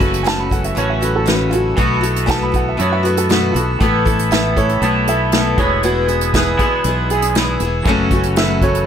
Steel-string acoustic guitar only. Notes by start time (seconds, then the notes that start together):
0.00 E3 A3 C#4 F#4
0.24 F#2 C#3 E3 A3 C#4 F#4
0.50 E3 A3 C#4 F#4
0.75 E3 A3 C#4 F#4
1.01 E3 A3 C#4 F#4
1.26 F#2 C#3 E3 A3 C#4 F#4
1.51 E3 A3 C#4 F#4
1.77 B2 E3 A3 E4 F#4
2.01 A3 E4 F#4
2.26 B2 E3 A3 E4 F#4
2.52 A3 E4 F#4
2.77 E3 A3 E4 F#4
3.03 A3 E4 F#4
3.29 B2 E3 A3 E4 F#4
3.54 A3 E4 F#4
3.80 A3 B3 E4 A4
4.05 B3 E4 A4
4.31 A3 B3 E4 A4
4.56 B3 E4 A4
4.82 A3 B3 E4 A4
5.08 B3 E4 A4
5.34 A3 B3 E4 A4
5.58 B3 E4 G#4
5.83 E3 B3 E4 G#4
6.08 B3 E4 G#4
6.34 E3 B3 E4 G#4
6.60 B3 E4 G#4
6.86 E3 B3 E4 G#4
7.11 B3 E4 G#4
7.36 E3 B3 E4 G#4
7.62 B3 E4 G#4
7.87 F#2 C#3 E3 A3 C#4 F#4
8.12 E3 A3 C#4 F#4
8.37 F#2 C#3 E3 A3 C#4 F#4
8.61 E3 A3 C#4 F#4